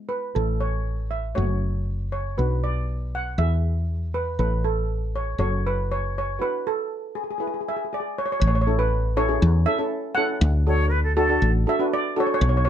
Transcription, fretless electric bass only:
0.36 1.35 A1 medium
1.38 2.36 F#1 medium
2.39 3.37 B1 medium
3.38 4.37 E2 medium
4.39 5.38 A1 medium
5.38 6.38 F#1 medium
8.41 9.38 A1 loud
9.42 9.65 E2 loud
10.41 11.38 D2 loud
11.42 11.65 A1 medium
12.41 12.69 B1 loud

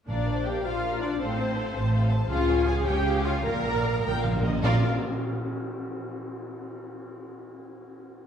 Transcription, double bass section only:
0.09 0.58 A#1 medium
0.64 1.13 A#1 soft
1.19 1.68 A1 medium
1.75 2.23 A1 medium
2.30 2.79 C#2 medium
2.86 3.38 C#2 medium
3.44 3.97 A#1 medium
4.04 4.57 A#1 medium
4.64 4.86 A#1 medium

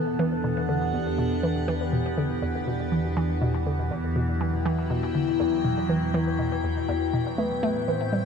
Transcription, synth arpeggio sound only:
0.00 0.18 E3 medium
0.19 0.43 E3 loud
0.44 0.61 B2 medium
0.69 0.86 D3 medium
0.94 1.17 E2 medium
1.18 1.36 B2 medium
1.43 1.67 E3 medium
1.68 1.92 E3 loud
1.93 2.10 B2 medium
2.18 2.35 D3 medium
2.42 2.66 E2 medium
2.67 2.84 B2 medium
2.92 3.16 E3 medium
3.17 3.40 E3 loud
3.42 3.59 B2 medium
3.66 3.84 D3 medium
3.91 4.15 E2 medium
4.16 4.33 B2 medium
4.41 4.64 E3 medium
4.66 4.89 E3 medium
4.90 5.08 B2 medium
5.15 5.32 D3 medium
5.40 5.63 E2 medium
5.65 5.82 B2 medium
5.89 6.13 E3 medium
6.14 6.38 E3 loud
6.39 6.56 B2 medium
6.64 6.81 E2 medium
6.89 7.12 E2 medium
7.13 7.31 B2 medium
7.38 7.62 A3 medium
7.63 7.87 A3 medium
7.88 8.05 E3 medium
8.13 8.25 G3 medium

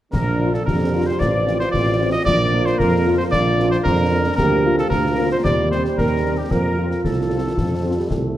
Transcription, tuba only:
0.13 0.58 A#1 medium
0.68 1.11 F2 medium
1.20 1.64 A1 medium
1.73 2.17 A1 medium
2.27 2.71 A#1 medium
2.80 3.24 F2 medium
3.33 3.77 A#1 medium
3.85 4.30 F2 medium
4.38 4.82 D2 medium
4.92 5.36 D2 medium
5.45 5.89 D#2 medium
5.98 6.42 D#2 medium
6.51 6.95 F2 medium
7.05 7.49 C2 medium
7.58 8.02 F2 medium
8.10 8.37 C2 medium

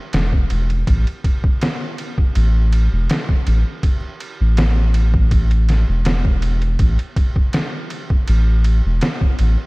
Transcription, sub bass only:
0.14 0.46 E1 medium
0.51 0.83 E1 loud
0.88 1.05 A1 medium
2.36 2.88 A1 loud
2.93 3.08 E1 loud
3.47 3.64 A1 medium
4.41 5.85 A1 medium
5.89 6.76 E1 loud
6.80 6.97 A1 loud
8.29 8.81 A1 loud
8.86 9.00 E1 loud
9.40 9.56 A1 medium

